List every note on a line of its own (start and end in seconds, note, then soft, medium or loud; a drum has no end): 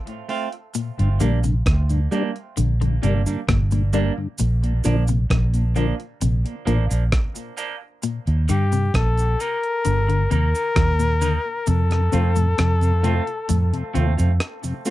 0.07 closed hi-hat soft
0.29 0.47 A3 medium
0.29 0.47 C4 medium
0.29 0.48 F4 medium
0.29 open hi-hat medium
0.52 closed hi-hat soft
0.74 0.90 A#2 medium
0.74 closed hi-hat medium
0.74 cabasa medium
0.99 1.18 G1 medium
0.99 1.09 G2 medium
0.99 1.09 D3 medium
0.99 closed hi-hat soft
1.20 1.61 A#1 medium
1.20 1.35 D3 medium
1.20 1.38 G3 medium
1.20 1.32 G3 medium
1.20 1.39 A#3 medium
1.20 1.32 A#3 medium
1.20 1.32 D4 medium
1.20 1.39 D4 medium
1.20 closed hi-hat medium
1.20 cabasa medium
1.44 1.55 G2 medium
1.44 1.58 C3 medium
1.44 1.55 D3 medium
1.44 closed hi-hat soft
1.44 cabasa medium
1.66 2.06 D2 medium
1.66 kick loud
1.66 cross-stick loud
1.66 closed hi-hat loud
1.89 2.00 G2 medium
1.89 2.00 D3 medium
1.89 closed hi-hat soft
1.89 cabasa soft
2.11 2.30 G3 loud
2.11 2.23 G3 medium
2.11 2.23 A#3 medium
2.11 2.30 A#3 medium
2.11 2.23 D4 medium
2.11 2.30 D4 loud
2.11 closed hi-hat medium
2.11 cabasa soft
2.36 closed hi-hat soft
2.57 2.98 A#1 medium
2.57 2.72 D3 medium
2.57 closed hi-hat medium
2.57 cabasa medium
2.81 2.91 G2 medium
2.81 2.91 D3 medium
2.81 2.95 D3 medium
2.81 closed hi-hat soft
3.02 3.24 G1 medium
3.02 3.18 C3 medium
3.02 3.14 G3 medium
3.02 3.21 G3 medium
3.02 3.14 A#3 medium
3.02 3.21 A#3 medium
3.02 3.14 D4 medium
3.02 3.21 D4 medium
3.02 closed hi-hat medium
3.02 cabasa soft
3.26 3.37 G2 medium
3.26 3.37 D3 medium
3.26 3.40 G3 medium
3.26 3.40 A#3 medium
3.26 3.39 D4 medium
3.26 cabasa medium
3.48 4.09 G1 loud
3.48 3.63 A#2 medium
3.48 kick loud
3.48 cross-stick loud
3.48 closed hi-hat medium
3.71 3.82 G2 medium
3.71 3.86 A#2 medium
3.71 3.82 D3 medium
3.71 closed hi-hat soft
3.71 cabasa medium
3.93 4.09 D3 medium
3.93 4.12 G3 medium
3.93 4.05 G3 medium
3.93 4.12 A#3 loud
3.93 4.05 A#3 medium
3.93 4.12 D4 loud
3.93 4.05 D4 medium
3.93 closed hi-hat medium
3.93 cabasa medium
4.18 4.28 G2 medium
4.18 4.28 D3 medium
4.38 4.80 A#1 medium
4.38 4.54 A#2 medium
4.38 closed hi-hat medium
4.38 cabasa medium
4.63 4.73 A#2 medium
4.63 closed hi-hat medium
4.84 5.25 A#1 loud
4.84 5.00 D3 medium
4.84 4.96 F3 medium
4.84 5.03 F3 medium
4.84 4.96 A#3 medium
4.84 5.03 A#3 medium
4.84 4.96 D4 medium
4.84 5.03 D4 medium
4.84 closed hi-hat medium
4.84 cabasa medium
5.08 5.19 A#2 medium
5.08 5.22 C3 medium
5.08 closed hi-hat soft
5.08 cabasa medium
5.30 5.91 A#1 medium
5.30 5.45 A#2 medium
5.30 kick loud
5.30 cross-stick loud
5.30 closed hi-hat medium
5.54 5.64 A#2 medium
5.54 closed hi-hat soft
5.54 cabasa soft
5.75 5.91 D3 medium
5.75 5.87 F3 medium
5.75 5.94 F3 medium
5.75 5.87 A#3 medium
5.75 5.94 A#3 medium
5.75 5.87 D4 medium
5.75 5.94 D4 medium
5.75 closed hi-hat medium
5.75 cabasa soft
6.00 closed hi-hat soft
6.21 6.43 A#1 medium
6.21 6.36 C3 medium
6.21 closed hi-hat loud
6.21 cabasa medium
6.45 6.55 A#2 medium
6.45 closed hi-hat soft
6.65 6.88 A1 loud
6.65 6.82 A#2 medium
6.65 6.84 F3 medium
6.65 6.78 F3 medium
6.65 6.85 A#3 loud
6.65 6.78 A#3 medium
6.65 6.85 D4 medium
6.65 6.78 D4 medium
6.65 closed hi-hat medium
6.65 cabasa soft
6.89 7.10 A#1 medium
6.89 7.01 A#2 medium
6.89 7.04 F3 medium
6.89 7.04 A#3 medium
6.89 7.03 D4 medium
6.89 cabasa medium
7.12 kick loud
7.12 cross-stick loud
7.12 closed hi-hat medium
7.35 7.46 A#2 medium
7.35 closed hi-hat medium
7.35 cabasa medium
7.57 7.75 F3 medium
7.57 7.69 F3 medium
7.57 7.76 A#3 loud
7.57 7.69 A#3 medium
7.57 7.76 D4 medium
7.57 7.69 D4 medium
7.57 closed hi-hat medium
7.57 cabasa medium
7.81 7.92 A#2 medium
8.03 8.18 A#2 medium
8.03 closed hi-hat medium
8.03 cabasa medium
8.27 8.46 D#2 medium
8.27 closed hi-hat soft
8.48 8.89 G2 medium
8.48 8.64 D3 medium
8.48 8.67 G3 medium
8.48 8.60 G3 medium
8.48 8.67 A#3 medium
8.48 8.60 D#4 medium
8.48 8.67 D#4 loud
8.48 8.97 G4 loud
8.48 closed hi-hat medium
8.48 cabasa medium
8.72 8.86 C3 medium
8.72 closed hi-hat soft
8.72 cabasa medium
8.94 9.34 A#1 medium
8.94 9.43 A4 loud
8.94 kick loud
8.94 cross-stick loud
8.94 closed hi-hat medium
9.18 closed hi-hat soft
9.18 cabasa medium
9.39 9.58 G3 medium
9.39 9.58 A#3 medium
9.39 9.58 D#4 loud
9.39 10.31 A#4 loud
9.39 closed hi-hat medium
9.39 cabasa soft
9.63 closed hi-hat soft
9.85 10.26 G1 medium
9.85 10.00 D3 medium
9.85 closed hi-hat loud
9.85 cabasa medium
10.09 10.22 D3 medium
10.09 closed hi-hat soft
10.30 10.52 D#2 medium
10.30 10.46 C3 medium
10.30 10.49 G3 medium
10.30 10.42 A#3 medium
10.30 10.49 A#3 loud
10.30 10.49 D#4 medium
10.30 11.70 A#4 loud
10.30 closed hi-hat medium
10.30 cabasa soft
10.54 10.68 G3 medium
10.54 10.68 A#3 medium
10.54 10.68 D#4 medium
10.54 cabasa medium
10.76 11.37 D#2 medium
10.76 10.91 A#2 medium
10.76 kick loud
10.76 cross-stick loud
10.76 closed hi-hat medium
11.00 11.13 A#2 medium
11.00 closed hi-hat soft
11.00 cabasa medium
11.20 11.36 D3 medium
11.20 11.32 G3 medium
11.20 11.40 G3 medium
11.20 11.33 A#3 medium
11.20 11.40 A#3 medium
11.20 11.40 D#4 loud
11.20 closed hi-hat medium
11.20 cabasa medium
11.67 12.08 F2 loud
11.67 11.82 C3 medium
11.67 14.41 A4 loud
11.67 closed hi-hat medium
11.67 cabasa medium
11.90 12.01 F2 medium
11.90 12.01 C3 medium
11.90 cross-stick medium
11.90 closed hi-hat medium
12.12 12.53 F2 loud
12.12 12.27 C3 medium
12.12 12.24 A3 medium
12.12 12.31 A3 medium
12.12 12.24 C4 medium
12.12 12.31 C4 medium
12.12 12.24 F4 medium
12.12 12.31 F4 loud
12.12 closed hi-hat medium
12.12 cabasa medium
12.36 12.47 F2 medium
12.36 12.50 A2 medium
12.36 12.47 C3 medium
12.36 closed hi-hat soft
12.36 cabasa medium
12.58 13.19 F2 medium
12.58 12.73 C3 medium
12.58 cross-stick loud
12.58 closed hi-hat medium
12.81 12.92 F2 medium
12.81 12.92 C3 medium
12.81 closed hi-hat soft
12.81 cabasa soft
13.03 13.18 C3 medium
13.03 13.15 A3 medium
13.03 13.22 A3 medium
13.03 13.15 C4 medium
13.03 13.22 C4 medium
13.03 13.15 F4 medium
13.03 13.22 F4 loud
13.03 closed hi-hat medium
13.03 cabasa soft
13.27 closed hi-hat soft
13.49 13.71 F2 loud
13.49 13.64 A2 medium
13.49 closed hi-hat loud
13.49 cabasa medium
13.73 13.83 F2 medium
13.73 13.83 C3 medium
13.73 closed hi-hat medium
13.94 14.16 D#2 loud
13.94 14.09 C3 medium
13.94 14.12 A3 medium
13.94 14.06 A3 medium
13.94 14.13 C4 medium
13.94 14.06 C4 medium
13.94 14.06 F4 medium
13.94 14.13 F4 medium
13.94 closed hi-hat medium
13.94 cabasa soft
14.17 14.29 F2 medium
14.17 14.38 F2 medium
14.17 14.29 C3 medium
14.17 14.32 A3 medium
14.17 14.31 C4 medium
14.17 14.31 F4 medium
14.17 closed hi-hat soft
14.17 cabasa medium
14.40 cross-stick loud
14.40 closed hi-hat medium
14.63 14.74 F2 medium
14.63 14.74 C3 medium
14.63 closed hi-hat medium
14.63 cabasa medium
14.85 14.90 A3 medium
14.85 14.90 C4 medium
14.85 14.90 F4 medium
14.85 open hi-hat medium
14.85 cabasa medium